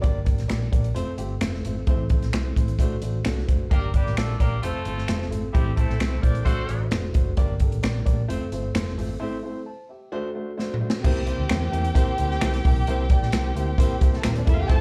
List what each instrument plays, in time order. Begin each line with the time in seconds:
0.01 fingered electric bass G1, upright piano A#3 D4 G4 D5, kick, closed hi-hat
0.25 upright piano A#3 D4 G4 D5, kick, closed hi-hat
0.38 fingered electric bass A1, snare, closed hi-hat
0.48 fingered electric bass A#1, upright piano A#3 D4 G4 D5, finger snap, snare, closed hi-hat
0.71 fingered electric bass A#1, upright piano A#3 D4 G4 D5, kick, closed hi-hat
0.84 closed hi-hat
0.94 upright piano A3 C4 F4 C5, closed hi-hat
1.08 muted fingered electric bass stroke
1.17 fingered electric bass G1, upright piano A3 C4 F4 G4, closed hi-hat
1.41 fingered electric bass F1, upright piano A3 C4 F4 C5, finger snap, snare, closed hi-hat
1.54 snare
1.65 fingered electric bass G#1, upright piano A3 C4 F4 C5, closed hi-hat
1.87 fingered electric bass A1, upright piano A3 C4 E4 C5, kick, closed hi-hat
2.10 upright piano A3 C4 E4 C5, kick, closed hi-hat
2.22 fingered electric bass A#1, snare, closed hi-hat
2.33 fingered electric bass C2, upright piano A3 C4 E4 C5, finger snap, snare, closed hi-hat
2.56 fingered electric bass A1, upright piano A3 C4 E4 C5, kick, closed hi-hat
2.68 closed hi-hat
2.79 fingered electric bass A2, upright piano A3 D4 F#4 C5, kick, closed hi-hat
3.01 fingered electric bass A1, upright piano A3 D4 F#4 C5, closed hi-hat
3.24 fingered electric bass C2, upright piano A3 D4 F#4 A4, finger snap, snare, closed hi-hat
3.38 snare
3.47 fingered electric bass F#1, upright piano A3 D4 F#4 C5, kick, closed hi-hat
3.71 fingered electric bass G1, upright piano A#3 D4 G4 D5, horn section A#3 D4 G4 A#4, kick, closed hi-hat
3.94 horn section G3 A#3 D4 G4, upright piano A#3 D4 G4 D5, kick, closed hi-hat
4.06 fingered electric bass A1, snare
4.17 fingered electric bass A#1, horn section A3 D4 F4 A4, upright piano A#3 D4 G4 D5, finger snap, snare, closed hi-hat
4.40 fingered electric bass A#1, upright piano A#3 D4 G4 D5, horn section A#3 D4 G4 A#4, kick, closed hi-hat
4.62 fingered electric bass F1, horn section A3 C4 F4 A4, upright piano A3 C4 F4 C5, closed hi-hat
4.75 muted fingered electric bass stroke
4.85 fingered electric bass G1, upright piano A3 C4 F4 C5, closed hi-hat
4.98 snare
5.08 fingered electric bass F1, upright piano A3 C4 F4 C5, finger snap, snare, closed hi-hat
5.22 snare
5.30 fingered electric bass G#1, upright piano A3 C4 F4 A4, closed hi-hat
5.53 fingered electric bass A1, horn section G3 C4 E4 G4, upright piano A3 C4 E4 C5, kick, closed hi-hat
5.76 horn section A3 C4 E4 A4, upright piano A3 C4 E4 C5, kick, closed hi-hat
5.89 fingered electric bass A#1, snare
5.99 fingered electric bass C2, upright piano A3 C4 E4 C5, finger snap, snare, closed hi-hat
6.22 fingered electric bass A#1, upright piano A3 C4 E4 C5, horn section D4 G4 A#4 D5, kick, closed hi-hat
6.35 closed hi-hat
6.45 fingered electric bass A1, upright piano A3 D4 F#4 C5, horn section C4 F#4 A4 C5, kick, closed hi-hat
6.57 muted fingered electric bass stroke
6.69 fingered electric bass A1, upright piano A3 D4 F#4 C5, closed hi-hat
6.91 fingered electric bass F1, upright piano A3 D4 F#4 C5, finger snap, snare, closed hi-hat
7.14 fingered electric bass F#1, upright piano A3 D4 F#4 C5, kick, closed hi-hat
7.37 fingered electric bass G1, upright piano A#3 D4 G4 D5, kick, closed hi-hat
7.60 upright piano A#3 D4 G4 A4, kick, closed hi-hat
7.72 fingered electric bass A1, closed hi-hat
7.83 fingered electric bass A#1, upright piano A#3 D4 G4 D5, finger snap, snare, closed hi-hat
8.05 fingered electric bass A#1, upright piano A#3 D4 G4 D5, kick, closed hi-hat
8.28 fingered electric bass F1, upright piano A3 C4 F4 C5, closed hi-hat
8.41 muted fingered electric bass stroke
8.52 fingered electric bass G1, upright piano A3 C4 F4 C5, closed hi-hat
8.74 fingered electric bass F1, upright piano A3 C4 F4 C5, finger snap, snare, closed hi-hat
8.88 snare
8.97 fingered electric bass G#1, upright piano A3 C4 F4 C5, open hi-hat
9.20 upright piano A3 C4 E4 C5
9.43 upright piano A3 C4 E4 C5
9.66 upright piano C5 A5
9.89 upright piano G4 E5
10.12 upright piano A3 D4 F#4 C5
10.35 upright piano A3 D4 F#4 C5
10.57 upright piano A3 D4 F#4 C5, snare
10.74 mid tom
10.80 upright piano A3 D4 F#4 C5
10.90 snare
11.04 fingered electric bass C2, upright piano A#3 C4 E4 G4 C5, string section G4 G5, kick, crash
11.26 upright piano A#3 C4 E4 G4 C5, closed hi-hat
11.38 fingered electric bass D2
11.49 fingered electric bass E2, upright piano A#3 C4 E4 G4 C5, finger snap, snare, closed hi-hat
11.71 fingered electric bass E2, upright piano A#3 C4 E4 G4 C5, closed hi-hat
11.85 closed hi-hat
11.94 upright piano A#3 C4 E4 G4 C5, kick, closed hi-hat
12.08 muted fingered electric bass stroke
12.18 fingered electric bass D2, upright piano A#3 C4 E4 G4 C5, closed hi-hat
12.31 snare
12.41 fingered electric bass C2, upright piano A#3 C4 E4 G4 C5, finger snap, snare, closed hi-hat
12.54 snare, closed hi-hat
12.65 fingered electric bass B1, upright piano A#3 C4 E4 G4 C5, kick, open hi-hat
12.87 fingered electric bass C2, upright piano A#3 C4 E4 G4 C5, closed hi-hat
13.10 upright piano A#3 C4 E4 G4 D5, kick, closed hi-hat
13.22 fingered electric bass A#1, snare
13.32 fingered electric bass C2, upright piano A#3 C4 E4 G4 C5, finger snap, snare, closed hi-hat
13.55 fingered electric bass D2, upright piano A#3 C4 E4 G4 C5, closed hi-hat
13.78 upright piano A#3 C4 E4 G4 C5, kick, closed hi-hat
13.90 muted fingered electric bass stroke
14.01 fingered electric bass C2, upright piano A#3 C4 E4 G4 C5, kick, closed hi-hat
14.13 string section A3 A4, snare
14.23 fingered electric bass D#1, string section A#3 A#4, upright piano A#3 C4 E4 G4 C5, finger snap, snare, closed hi-hat
14.31 string section C4 C5
14.35 string section D4 D5, closed hi-hat
14.46 fingered electric bass E1, upright piano A#3 C4 E4 G4 A4, string section E4 E5, kick, closed hi-hat
14.54 string section F4 F5
14.62 string section G4 G5
14.68 fingered electric bass F1, upright piano A3 C4 E4 F4 C5, string section A4 A5, kick, closed hi-hat